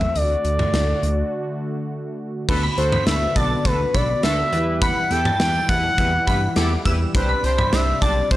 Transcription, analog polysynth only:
2.49 2.63 D4 loud
2.49 2.63 F#4 medium
2.49 2.63 A4 loud
2.78 2.92 D4 loud
2.78 2.92 F#4 medium
2.78 2.92 A4 loud
3.07 3.21 D4 medium
3.07 3.21 F#4 medium
3.07 3.21 A4 medium
3.36 3.50 D4 medium
3.36 3.50 F#4 medium
3.36 3.50 A4 medium
3.65 3.79 D4 medium
3.65 3.79 F#4 medium
3.65 3.79 A4 medium
3.94 4.08 D4 medium
3.94 4.08 F#4 medium
3.94 4.08 A4 medium
4.23 4.37 D4 loud
4.23 4.37 F#4 medium
4.23 4.37 A4 loud
4.52 4.99 E4 medium
4.52 4.99 G4 medium
4.52 4.99 B4 medium
5.11 5.25 E4 loud
5.11 5.25 G4 medium
5.11 5.25 A4 loud
5.40 5.54 E4 medium
5.40 5.54 G4 medium
5.40 5.54 B4 medium
5.69 5.83 E4 medium
5.69 5.83 G4 medium
5.69 5.83 B4 medium
5.98 6.12 E4 medium
5.98 6.12 G4 medium
5.98 6.12 B4 medium
6.27 6.41 E4 medium
6.27 6.41 G4 medium
6.27 6.41 B4 medium
6.56 6.70 E4 loud
6.56 6.70 G4 loud
6.56 6.70 A4 loud
6.86 7.00 E4 loud
6.86 7.00 G4 medium
6.86 7.00 B4 loud
7.15 7.29 D4 loud
7.15 7.29 G4 medium
7.15 7.29 C5 loud
7.44 7.58 D4 loud
7.44 7.58 G4 medium
7.44 7.58 C5 loud
7.73 7.87 D4 medium
7.73 7.87 G4 medium
7.73 7.87 C5 medium
8.02 8.16 D4 medium
8.02 8.16 G4 medium
8.02 8.16 C5 medium
8.31 8.37 D4 medium
8.31 8.37 G4 medium
8.31 8.37 C5 medium

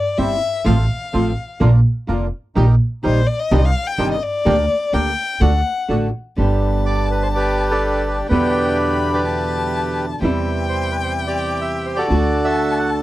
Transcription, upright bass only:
0.19 0.38 G1 medium
0.66 0.86 A1 medium
1.14 1.34 A1 medium
1.61 1.80 A#1 loud
2.09 2.28 F1 medium
2.56 2.76 A#1 loud
3.05 3.24 A#1 medium
3.51 3.71 C2 loud
3.98 4.18 G1 medium
4.46 4.66 D2 loud
4.94 5.13 D2 medium
5.41 5.61 D2 loud
5.89 6.10 A1 medium
6.38 8.21 G1 medium
8.31 10.12 E2 medium
10.22 12.01 E2 medium
12.10 13.03 D2 medium

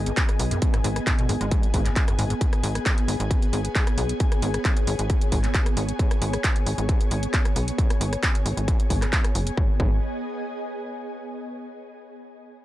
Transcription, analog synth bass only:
0.00 0.11 G#1 loud
0.40 0.56 B1 medium
0.84 1.00 G#1 loud
1.29 1.37 G#1 medium
1.41 1.56 G#1 medium
1.74 1.90 G#1 medium
2.19 2.35 G#1 loud
2.63 2.79 G#1 loud
3.08 3.16 G#1 medium
3.20 3.35 G#1 medium
3.53 3.69 G#1 loud
3.98 4.14 B1 medium
4.42 4.58 G#1 loud
4.87 4.96 G#1 medium
4.99 5.14 G#1 medium
5.32 5.48 G#1 medium
5.77 5.93 G#1 loud
6.22 6.38 G#1 loud
6.66 6.75 G#1 medium
6.78 6.94 G#1 medium
7.11 7.27 G#1 loud
7.56 7.72 B1 medium
8.01 8.17 G#1 loud
8.46 8.54 G#1 medium
8.57 8.73 G#1 medium
8.90 9.06 G#1 medium
9.35 9.51 F#1 medium
9.57 9.70 G#1 loud
9.80 10.01 G#1 loud

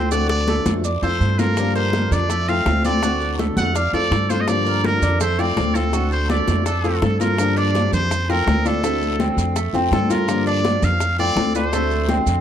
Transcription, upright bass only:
0.00 0.60 D2 medium
0.66 1.00 F2 loud
1.02 1.19 F2 medium
1.20 2.06 G2 medium
2.11 2.62 F2 medium
2.66 3.51 D2 loud
3.57 3.91 F2 medium
3.93 4.10 F2 medium
4.11 4.96 G2 medium
5.02 5.53 F2 medium
5.56 6.42 D2 medium
6.48 6.98 F2 loud
7.02 7.87 G2 medium
7.92 8.43 F2 loud
8.47 9.32 D2 medium
9.37 9.71 F2 medium
9.73 9.90 F2 medium
9.91 10.76 G2 loud
10.82 11.33 F2 medium
11.36 12.21 D2 medium
12.26 12.41 F2 loud

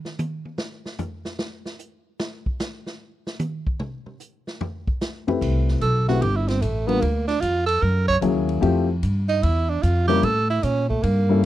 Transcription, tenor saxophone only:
5.82 6.06 A4 medium
6.09 6.24 F#4 medium
6.22 6.38 G4 medium
6.36 6.49 E4 medium
6.48 6.63 C4 medium
6.61 6.89 A3 medium
6.87 7.02 B3 loud
7.01 7.27 A#3 medium
7.28 7.42 D4 medium
7.41 7.66 F4 medium
7.66 7.83 A4 medium
7.82 8.08 A#4 medium
8.08 8.16 C#5 loud
9.28 9.44 D#4 medium
9.42 9.71 E4 medium
9.69 9.84 D4 medium
9.82 10.07 F4 medium
10.08 10.25 G4 loud
10.24 10.49 A4 loud
10.50 10.65 E4 medium
10.64 10.89 C#4 medium
10.89 11.04 A3 medium
11.03 11.45 A#3 medium

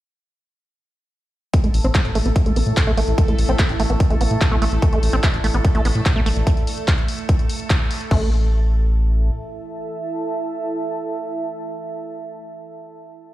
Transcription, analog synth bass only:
1.64 1.70 A1 medium
1.74 1.80 A1 loud
1.84 1.91 A1 medium
2.05 2.11 A1 medium
2.15 2.21 A1 loud
2.25 2.32 A1 medium
2.46 2.52 A1 medium
2.56 2.63 A1 loud
2.67 2.73 A2 medium
2.87 2.93 B1 medium
2.97 3.04 A1 loud
3.08 3.14 A1 medium
3.28 3.34 A1 medium
3.39 3.45 A1 loud
3.49 3.55 A1 medium
3.69 3.76 A1 medium
3.80 3.86 A1 loud
3.90 3.96 A1 medium
4.10 4.17 A1 medium
4.21 4.27 A1 loud
4.31 4.37 A2 medium
4.52 4.58 B1 medium
4.62 4.68 A1 loud
4.72 4.78 A1 medium
4.93 4.99 A1 medium
5.03 5.09 A1 loud
5.13 5.19 A1 medium
5.34 5.40 A1 medium
5.44 5.50 A1 loud
5.54 5.60 A1 medium
5.75 5.81 A1 medium
5.85 5.91 A1 loud
5.95 6.02 A2 medium
6.16 6.22 B1 medium
6.26 6.32 A1 loud
6.36 6.43 A1 medium
8.11 9.30 A1 loud

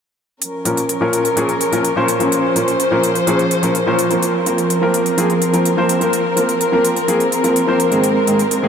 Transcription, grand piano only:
0.65 0.78 A#2 medium
0.65 0.78 F3 medium
0.65 0.78 A#3 medium
0.65 0.78 C#4 medium
0.65 0.79 A#4 medium
1.01 1.21 A#2 medium
1.01 1.22 F3 medium
1.01 1.22 A#3 medium
1.01 1.22 C#4 medium
1.01 1.22 A#4 medium
1.36 1.49 A#2 medium
1.36 1.50 F3 medium
1.36 1.50 A#3 medium
1.36 1.50 C#4 medium
1.36 1.50 G#4 medium
1.72 1.85 A#2 medium
1.72 1.85 F3 medium
1.72 1.85 A#3 medium
1.72 1.86 C#4 medium
1.72 1.86 A#4 medium
1.96 2.17 A#2 medium
1.96 2.17 F3 medium
1.96 2.17 A#3 medium
1.96 2.17 C#4 medium
1.96 2.18 C5 medium
2.20 2.40 A#2 medium
2.20 2.41 F3 medium
2.20 2.41 A#3 medium
2.20 2.41 C#4 medium
2.20 2.41 A#4 medium
2.55 2.68 A#2 medium
2.55 2.69 F3 medium
2.55 2.69 A#3 medium
2.55 2.69 C#4 medium
2.55 2.69 A#4 medium
2.91 3.12 A#2 medium
2.91 3.12 F3 medium
2.91 3.12 A#3 medium
2.91 3.12 C#4 medium
2.91 3.12 A#4 medium
3.27 3.40 A#2 medium
3.27 3.40 F3 medium
3.27 3.40 A#3 medium
3.27 3.40 C#4 medium
3.27 3.40 G#4 medium
3.62 3.76 A#2 medium
3.62 3.76 F3 medium
3.62 3.76 A#3 medium
3.62 3.76 C#4 medium
3.62 3.76 A#4 medium
3.86 4.08 A#2 medium
3.86 4.08 F3 medium
3.86 4.08 A#3 medium
3.86 4.08 C#4 medium
3.86 4.08 C5 medium
4.10 4.31 F3 medium
4.10 4.31 A#3 medium
4.10 4.31 C4 medium
4.10 4.32 A#4 medium
4.46 4.59 F3 medium
4.46 4.59 A#3 medium
4.46 4.59 C4 medium
4.46 4.60 A#4 medium
4.82 5.02 F3 medium
4.82 5.03 A#3 medium
4.82 5.03 C4 medium
4.82 5.03 A#4 medium
5.17 5.30 F3 medium
5.17 5.31 A#3 medium
5.17 5.31 C4 medium
5.17 5.31 G#4 medium
5.53 5.66 F3 medium
5.53 5.66 A#3 medium
5.53 5.67 C4 medium
5.53 5.67 A#4 medium
5.77 5.98 F3 medium
5.77 5.98 A#3 medium
5.77 5.98 C4 medium
5.77 5.99 C5 medium
6.01 6.21 F3 medium
6.01 6.22 A#3 medium
6.01 6.22 C4 medium
6.01 6.22 A#4 medium
6.36 6.49 F3 medium
6.36 6.50 A#3 medium
6.36 6.50 C4 medium
6.36 6.50 A#4 medium
6.72 6.93 F3 medium
6.72 6.93 A#3 medium
6.72 6.93 C4 medium
6.72 6.93 A#4 medium
7.08 7.21 F3 medium
7.08 7.21 A#3 medium
7.08 7.21 C4 medium
7.08 7.21 G#4 medium
7.43 7.57 F3 medium
7.43 7.57 A#3 medium
7.43 7.57 C4 medium
7.43 7.57 A#4 medium
7.67 7.88 F3 medium
7.67 7.89 A#3 medium
7.67 7.89 C4 medium
7.67 7.89 C5 medium
7.91 8.12 G#2 medium
7.91 8.12 D#3 medium
7.91 8.12 A#3 medium
7.91 8.12 C4 medium
7.91 8.12 G#4 medium
8.27 8.40 G#2 medium
8.27 8.40 D#3 medium
8.27 8.40 A#3 medium
8.27 8.40 C4 medium
8.27 8.41 G#4 medium
8.62 8.68 G#2 medium
8.62 8.68 D#3 medium
8.62 8.68 A#3 medium
8.62 8.68 C4 medium
8.62 8.68 G#4 medium

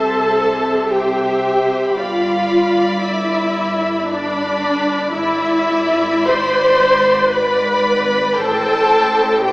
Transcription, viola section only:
0.00 0.89 A4 medium
0.89 1.96 G4 medium
1.96 3.03 F4 medium
3.03 4.07 E4 medium
4.09 5.15 D4 medium
5.14 6.25 E4 medium
6.27 7.32 C5 medium
7.31 8.39 B4 medium
8.38 9.46 A4 medium
9.45 9.53 G4 medium

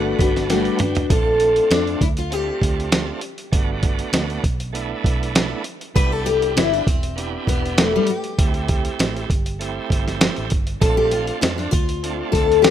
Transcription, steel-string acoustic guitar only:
0.00 0.19 A3 medium
0.00 0.20 D4 medium
0.00 0.20 F#4 medium
0.00 0.17 B4 medium
0.18 0.50 D4 soft
0.18 0.50 F#4 medium
0.18 0.49 B4 medium
0.49 0.80 G3 medium
0.49 0.80 A3 medium
0.49 0.81 D4 medium
0.49 0.81 F#4 medium
0.49 0.79 B4 medium
0.80 1.12 D4 soft
0.80 1.11 F#4 medium
0.80 1.10 B4 medium
1.11 1.67 A4 loud
1.72 2.03 D4 medium
2.02 2.07 E4 medium
2.18 2.33 F4 medium
2.33 3.84 G4 medium
5.96 6.12 B4 loud
6.12 6.26 A4 loud
6.26 6.56 G4 loud
6.57 6.73 E4 medium
6.73 6.87 D4 medium
6.87 7.48 C4 medium
7.48 7.79 B3 medium
7.78 7.95 A3 medium
7.96 8.09 G3 medium
8.10 9.57 G4 medium
10.81 10.97 A4 loud
10.97 11.12 G4 loud
11.11 11.41 F4 medium
11.41 11.46 E4 medium
11.58 11.71 D4 medium
11.71 12.35 F4 medium
12.32 12.62 A4 loud
12.62 12.70 G4 medium

